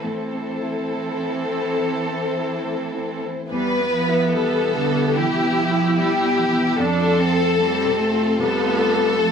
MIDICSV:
0, 0, Header, 1, 6, 480
1, 0, Start_track
1, 0, Tempo, 859599
1, 24, Time_signature, 4, 2, 24, 8
1, 2424, Tempo, 809717
1, 5374, End_track
2, 0, Start_track
2, 0, Title_t, "Violin section"
2, 0, Program_c, 0, 48
2, 25, Note_on_c, 0, 69, 47
2, 1820, Note_off_c, 0, 69, 0
2, 1958, Note_on_c, 0, 71, 55
2, 2403, Note_off_c, 0, 71, 0
2, 2430, Note_on_c, 0, 69, 59
2, 2913, Note_off_c, 0, 69, 0
2, 2915, Note_on_c, 0, 67, 59
2, 3385, Note_off_c, 0, 67, 0
2, 3392, Note_on_c, 0, 67, 64
2, 3861, Note_off_c, 0, 67, 0
2, 3871, Note_on_c, 0, 69, 71
2, 4821, Note_off_c, 0, 69, 0
2, 4828, Note_on_c, 0, 69, 78
2, 5374, Note_off_c, 0, 69, 0
2, 5374, End_track
3, 0, Start_track
3, 0, Title_t, "String section"
3, 0, Program_c, 1, 48
3, 24, Note_on_c, 1, 72, 39
3, 25, Note_on_c, 1, 64, 42
3, 26, Note_on_c, 1, 60, 41
3, 1936, Note_off_c, 1, 60, 0
3, 1936, Note_off_c, 1, 64, 0
3, 1954, Note_on_c, 1, 64, 51
3, 1956, Note_on_c, 1, 59, 54
3, 1956, Note_on_c, 1, 67, 55
3, 1957, Note_off_c, 1, 72, 0
3, 3844, Note_off_c, 1, 64, 0
3, 3845, Note_off_c, 1, 59, 0
3, 3845, Note_off_c, 1, 67, 0
3, 3866, Note_on_c, 1, 57, 63
3, 3867, Note_on_c, 1, 65, 63
3, 3868, Note_on_c, 1, 69, 64
3, 5374, Note_off_c, 1, 57, 0
3, 5374, Note_off_c, 1, 65, 0
3, 5374, Note_off_c, 1, 69, 0
3, 5374, End_track
4, 0, Start_track
4, 0, Title_t, "Viola"
4, 0, Program_c, 2, 41
4, 24, Note_on_c, 2, 60, 48
4, 1820, Note_off_c, 2, 60, 0
4, 1957, Note_on_c, 2, 59, 60
4, 2908, Note_on_c, 2, 64, 58
4, 2917, Note_off_c, 2, 59, 0
4, 3868, Note_off_c, 2, 64, 0
4, 3870, Note_on_c, 2, 62, 62
4, 4115, Note_on_c, 2, 60, 64
4, 4124, Note_off_c, 2, 62, 0
4, 4348, Note_off_c, 2, 60, 0
4, 4352, Note_on_c, 2, 60, 58
4, 4828, Note_on_c, 2, 59, 61
4, 4837, Note_off_c, 2, 60, 0
4, 5305, Note_off_c, 2, 59, 0
4, 5312, Note_on_c, 2, 57, 70
4, 5374, Note_off_c, 2, 57, 0
4, 5374, End_track
5, 0, Start_track
5, 0, Title_t, "Grand piano"
5, 0, Program_c, 3, 0
5, 0, Control_c, 3, 64, 127
5, 23, Note_on_c, 3, 45, 41
5, 36, Control_c, 3, 64, 0
5, 144, Control_c, 3, 64, 127
5, 184, Note_on_c, 3, 60, 30
5, 346, Note_on_c, 3, 64, 38
5, 438, Note_off_c, 3, 60, 0
5, 506, Note_on_c, 3, 57, 29
5, 601, Note_off_c, 3, 64, 0
5, 671, Note_on_c, 3, 52, 29
5, 763, Note_off_c, 3, 57, 0
5, 833, Note_on_c, 3, 60, 31
5, 927, Note_off_c, 3, 52, 0
5, 965, Note_off_c, 3, 45, 0
5, 993, Note_on_c, 3, 52, 28
5, 1089, Note_off_c, 3, 60, 0
5, 1154, Note_on_c, 3, 60, 33
5, 1251, Note_off_c, 3, 52, 0
5, 1316, Note_on_c, 3, 64, 29
5, 1412, Note_off_c, 3, 60, 0
5, 1475, Note_on_c, 3, 57, 28
5, 1573, Note_off_c, 3, 64, 0
5, 1641, Note_on_c, 3, 52, 33
5, 1734, Note_off_c, 3, 57, 0
5, 1806, Note_on_c, 3, 60, 32
5, 1897, Note_off_c, 3, 52, 0
5, 1958, Note_on_c, 3, 40, 53
5, 1961, Note_off_c, 3, 60, 0
5, 1967, Control_c, 3, 64, 0
5, 2054, Control_c, 3, 64, 127
5, 2120, Note_on_c, 3, 59, 48
5, 2277, Note_on_c, 3, 64, 57
5, 2366, Note_off_c, 3, 59, 0
5, 2428, Note_on_c, 3, 55, 44
5, 2527, Note_off_c, 3, 64, 0
5, 2594, Note_on_c, 3, 47, 43
5, 2687, Note_off_c, 3, 55, 0
5, 2754, Note_on_c, 3, 59, 48
5, 2849, Note_off_c, 3, 47, 0
5, 2888, Note_off_c, 3, 40, 0
5, 2911, Note_on_c, 3, 47, 43
5, 3009, Note_off_c, 3, 59, 0
5, 3073, Note_on_c, 3, 59, 50
5, 3167, Note_off_c, 3, 47, 0
5, 3236, Note_on_c, 3, 64, 50
5, 3328, Note_off_c, 3, 59, 0
5, 3392, Note_on_c, 3, 55, 46
5, 3488, Note_off_c, 3, 64, 0
5, 3550, Note_on_c, 3, 47, 45
5, 3646, Note_off_c, 3, 55, 0
5, 3710, Note_on_c, 3, 59, 51
5, 3805, Note_off_c, 3, 47, 0
5, 3869, Note_on_c, 3, 41, 64
5, 3870, Note_off_c, 3, 59, 0
5, 3880, Control_c, 3, 64, 0
5, 3977, Control_c, 3, 64, 127
5, 4031, Note_on_c, 3, 65, 46
5, 4193, Note_on_c, 3, 69, 61
5, 4288, Note_off_c, 3, 65, 0
5, 4350, Note_on_c, 3, 57, 50
5, 4449, Note_off_c, 3, 69, 0
5, 4508, Note_on_c, 3, 48, 54
5, 4607, Note_off_c, 3, 57, 0
5, 4673, Note_on_c, 3, 65, 54
5, 4765, Note_off_c, 3, 48, 0
5, 4807, Note_off_c, 3, 41, 0
5, 4824, Note_on_c, 3, 48, 53
5, 4927, Note_off_c, 3, 65, 0
5, 4987, Note_on_c, 3, 65, 52
5, 5081, Note_off_c, 3, 48, 0
5, 5145, Note_on_c, 3, 69, 54
5, 5242, Note_off_c, 3, 65, 0
5, 5304, Note_on_c, 3, 57, 57
5, 5374, Note_off_c, 3, 57, 0
5, 5374, Note_off_c, 3, 69, 0
5, 5374, End_track
6, 0, Start_track
6, 0, Title_t, "Cello"
6, 0, Program_c, 4, 42
6, 29, Note_on_c, 4, 52, 44
6, 1822, Note_off_c, 4, 52, 0
6, 1959, Note_on_c, 4, 55, 54
6, 2177, Note_off_c, 4, 55, 0
6, 2185, Note_on_c, 4, 53, 56
6, 2419, Note_on_c, 4, 52, 52
6, 2427, Note_off_c, 4, 53, 0
6, 2666, Note_off_c, 4, 52, 0
6, 2670, Note_on_c, 4, 50, 64
6, 2917, Note_on_c, 4, 52, 60
6, 2926, Note_off_c, 4, 50, 0
6, 3155, Note_on_c, 4, 53, 66
6, 3164, Note_off_c, 4, 52, 0
6, 3401, Note_on_c, 4, 55, 62
6, 3410, Note_off_c, 4, 53, 0
6, 3633, Note_on_c, 4, 52, 64
6, 3642, Note_off_c, 4, 55, 0
6, 3870, Note_on_c, 4, 53, 58
6, 3879, Note_off_c, 4, 52, 0
6, 4354, Note_on_c, 4, 55, 68
6, 4363, Note_off_c, 4, 53, 0
6, 4591, Note_on_c, 4, 57, 72
6, 4600, Note_off_c, 4, 55, 0
6, 4830, Note_off_c, 4, 57, 0
6, 4835, Note_on_c, 4, 55, 64
6, 5307, Note_on_c, 4, 53, 70
6, 5316, Note_off_c, 4, 55, 0
6, 5374, Note_off_c, 4, 53, 0
6, 5374, End_track
0, 0, End_of_file